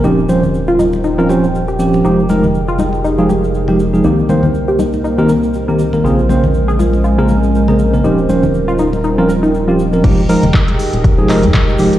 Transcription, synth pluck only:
X:1
M:4/4
L:1/16
Q:"Swing 16ths" 1/4=120
K:Fm
V:1 name="Synth pluck"
E z4 F E z E F G z2 G z2 | E z4 F E z E F G z2 G z2 | E z4 G E z E G B z2 B z2 | F z4 A F z F A B z2 B z2 |
E z4 F E z E F B E z F z2 | z16 |]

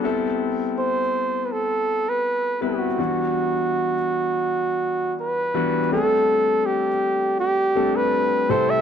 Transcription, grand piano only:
X:1
M:4/4
L:1/8
Q:"Swing 16ths" 1/4=82
K:Dmix
V:1 name="Grand piano"
[G,B,CEA]3 z4 [G,B,CEB] | [E,G,B,DF]3 z4 [E,G,B,DF] | [G,A,CDA]3 z2 [G,A,CDA]2 [C,G,A,CEA] |]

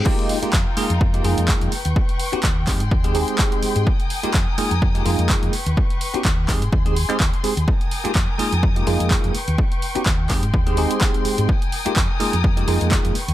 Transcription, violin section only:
X:1
M:4/4
L:1/8
Q:"Swing 16ths" 1/4=126
K:Fm
V:1 name="Violin section"
[EFBg]6- [EFBg] [=Bd']- | [=Bd']3 [A,c']4- [A,c'] | [Bae']6- [Bae'] [=Bd']- | [=Bd']3 [Ac']4- [Ac'] |
[Bgae']6- [Bgae'] [=Bd']- | [=Bd']3 [A,c']4- [A,c'] | [Bae']6- [Bae'] [=Bd'] |]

